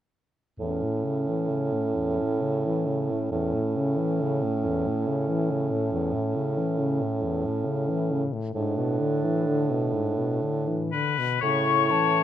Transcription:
0.59 E2 A2 C#4
0.83 A2
1.05 C#3
1.29 E3
1.50 C#3
1.73 A2
1.96 E2
2.20 A2
2.42 C#3
2.66 E3
2.88 C#3
3.10 A2
3.32 E2 A2 C#4
3.54 A2
3.77 C#3
3.98 E3
4.21 C#3
4.43 A2
4.66 E2
4.87 A2
5.08 C#3
5.29 E3
5.51 C#3
5.71 A2
5.93 E2
6.14 A2
6.36 C#3
6.58 E3
6.80 C#3
7.02 A2
7.23 E2
7.45 A2
7.66 C#3
7.89 E3
8.12 C#3
8.33 A2
8.55 G#2 A2 D4
8.77 B2
9.00 D3
9.24 E3
9.47 D3
9.70 B2
9.94 G#2
10.17 B2
10.42 D3
10.68 E3
10.91 D3 B4
11.19 B2
11.41 A2 C#3 E4 C#5 C#6
11.91 E3 C#4 A5

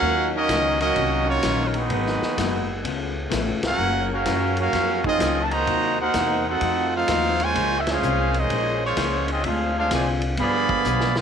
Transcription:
Already playing: A#3 C#4 F#4 A#4 F5 F#5
0.01 D#2 D#3 F#3 C#4 D#4 F4
0.35 F#3 A#3 C#4 D#4 F#4 A#4 D#5
0.49 C#2 D#3 F#3 C#4 F4, kick, snare, hi-hat pedal, ride
0.81 F#3 A#3 C#4 D#4 F#4 A#4 D#5, ride
0.95 C2 D#3 F#3 C#4, kick, ride
0.99 F4
1.27 F#3 A#3 C#4 F4 F#4 C#5
1.42 A#1 D#3 F#3 C#4 F4, kick, snare, hi-hat pedal, ride
1.66 A#4
1.74 D#3 F#3 G#3 B3 D#4 F#4 B4, ride
1.90 G#1 G#2 F#3 G#3 B3 D#4 F#4, kick, ride
2.07 snare
2.22 muted upright bass stroke, snare
2.37 F#1 G#2 F#3 B3 D#4, kick, snare, hi-hat pedal, ride
2.84 C#2 C#3 A3 B3 F4, kick, ride
3.30 A1 C#3 A3 B3 F4, kick, snare, hi-hat pedal, ride
3.48 F1
3.63 C#1 A#3 C#4 F#4 A#4 F5 F#5, snare, ride
3.78 F#1 F#3 A#3 C#4 F4
4.11 A#3 C#4 F#4 A#4 F5
4.25 F#2 F#3 A#3 C#4 F4, kick, snare, hi-hat pedal, ride
4.57 A#3 C#4 F#4 A#4 F5, ride
4.73 F2 F#3 A#3 C#4 F4, kick, snare, ride
5.04 C4 D#4 F4 G#4 D#5, kick
5.18 C#2 F#3 A#3 C#4 F4, kick, snare, hi-hat pedal, ride
5.43 A5
5.51 D#3 F#3 A#3 F#4 C5 D#5 A#5, ride
5.66 D#2 C3 A#3 D#4 F#4, kick, ride
6.01 A#3 D#4 F#4 A#4 C5 F#5
6.14 E2 C3 A#3 D#4 F#4, kick, snare, hi-hat pedal, ride
6.48 C4 D#4 F#4 A4 C5 F#5
6.60 F2 D#3 F3 A3 D#4 F4 F#4, kick, ride
6.95 A3 C4 D#4 F4 A4 C5 F5
7.08 D#2 F3 A3 D#4 F#4, kick, snare, hi-hat pedal, ride
7.40 C#3 F3 G#3 F4 C5 C#5 G#5, ride
7.54 C#2 A#2 G#3 A#3 C#4 G#4, kick, ride
7.59 C5
7.79 E5
7.87 G#3 C#4 F4, snare, ride
7.91 C#4 G#4 C5 F5
8.02 C2 A#3 C#4 G#4 C5, hi-hat pedal
8.34 F3 G#3 C#4 D#4, ride
8.38 G#4 C5 D#5
8.50 A#1 A#3 C#4 G#4 C5, kick, ride
8.82 F3 G#3 C#4 F4 C5 C#5
8.96 C#2 A#3 C#4 G#4 C5, kick, snare, hi-hat pedal, ride
9.28 C4 D#4 D#5, ride
9.32 F4 G#4
9.44 D2 D3 G#3 C4 F4 G#4 E5, kick, ride
9.48 D4 G#4 C5 F5
9.76 G#3 C4 D4 F4 G#4 C5 F5
9.90 C2 C3 D3 F3 G#3 C4 F4 G#4 C5 G#5, kick, snare, hi-hat pedal, ride
9.95 D5
10.22 ride
10.37 G1 D3 F3 G3 B3 F4 G#4 D5 F5 B5, kick, ride
10.41 G#4
10.69 kick
10.84 B1 G3 B3 F4 G#4, hi-hat pedal
11.00 snare
11.16 D3 F3 B3, snare

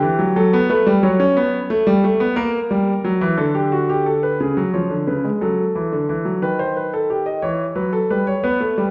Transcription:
Already playing: G4
0.02 E3
0.19 F#3
0.36 F#3 A4
0.53 B3
0.70 A3 B4
0.87 G3
1.03 F#3 C#5
1.20 C#4
1.37 B3
1.70 A3
1.87 G3
2.04 A3
2.20 B3
2.36 A#3 A#4
2.71 G3
3.04 F#3
3.21 E3
3.37 D3 A4
3.55 G4
3.72 F#4
3.89 G4
4.06 A4
4.23 B4
4.40 C#3 G#4
4.57 F#3
4.74 F3 C#5
4.90 D3
5.07 C#3 B4
5.25 G#3
5.41 F#3 A4
5.75 E3
5.92 D3
6.09 E3
6.25 F#3
6.42 D#3 B4
6.59 C5
6.77 B4
6.94 A4
7.10 G4
7.26 D#5
7.42 E3 C#5
7.75 F#3 B4
7.93 A4
8.10 G3 B4
8.27 C#5
8.44 B3 B4
8.60 A3
8.78 G3

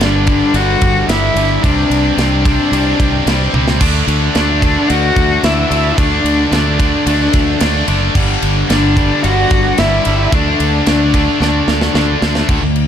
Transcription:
0.00 G1 G2 D3 G3 D4 D5, snare, ride
0.26 G2 D3 G3, kick, ride
0.54 G1 G2 D3 G3 F#4 F#5, ride
0.81 G1, kick, ride
1.08 G1 G2 D3 G3 E4 E5, snare, ride
1.35 G1 G2 D3 G3, ride
1.62 C2 C3 G3 C4 D4 D5, kick, ride
1.90 C2, ride
2.17 C2 C3 G3 C4 D4 D5, snare, ride
2.45 C3 G3 C4, kick, ride
2.72 C2 C3 G3 C4, ride
3.00 C2, kick, ride
3.26 C2 C3 G3 C4, snare, ride
3.53 C#2 C3 G3 C4, high tom
3.68 snare
3.80 D2 D3 A3 D4, kick, crash, splash
4.07 D2, ride
4.34 D2 D3 A3 D4 D5, snare, ride
4.62 D3 A3 D4, kick, ride
4.87 D2 D3 A3 D4 F#4 F#5, ride
5.16 D2, kick, ride
5.43 D2 D3 A3 D4 E4 E5, snare, ride
5.70 D2 D3 A3 D4, ride
5.97 D2 D3 A3 D4 D5, kick, ride
6.24 D2, ride
6.52 D2 D3 A3 D4 D5, snare, ride
6.79 D3 A3 D4, kick, ride
7.06 D2 D3 A3 D4, ride
7.33 D2, kick, ride
7.60 D2 D3 A3 D4, snare, ride
7.87 F#1 D3 A3 D4, ride
8.15 G1 G2 D3 G3, kick, crash
8.42 G1, ride
8.69 G1 G2 D3 G3 D4 D5, snare, ride
8.96 G2 D3 G3, kick, ride
9.23 G1 G2 D3 G3 F#4 F#5, ride
9.51 G1, kick, ride
9.78 G1 G2 D3 G3 E4 E5, snare, ride
10.05 G1 G2 D3 G3, ride
10.32 D2 D3 A3 D4 D5, kick, ride
10.60 D2, ride
10.86 D2 D3 A3 D4 D5, snare, ride
11.14 D3 A3 D4, kick, ride
11.39 D2 D3 A3 D4, snare
11.67 D2, snare
11.81 snare
11.94 D2 D3 A3 D4, snare
12.21 D2 D3 A3 D4, snare
12.35 snare
12.48 D2 D3 A3, kick, crash
12.62 D2 D3 A3
12.76 crash

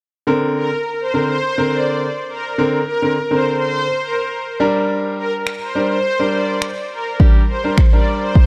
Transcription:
0.27 D3 C4 A#4
0.56 A#4
1.00 C5
1.14 D3 C4 A#4
1.29 C5
1.58 D3 C4 A#4
1.71 D5
2.29 A#4
2.58 D3 C4 A#4
2.87 A#4
3.02 D3 C4 A#4
3.31 D3 C4 A#4 C5
3.60 C5
4.03 A#4
4.60 G3 D4 A#4
5.18 A#4
5.47 finger snap
5.62 C5
5.75 G3 D4 A#4
5.91 C5
6.20 G3 D4 A#4
6.34 D5
6.62 finger snap
6.92 A#4
7.20 G3 D4 G4, kick
7.49 C5
7.64 G3 D4 A#4
7.77 finger snap, kick
7.93 G3 D4 A#4 D5
8.22 C5
8.35 kick

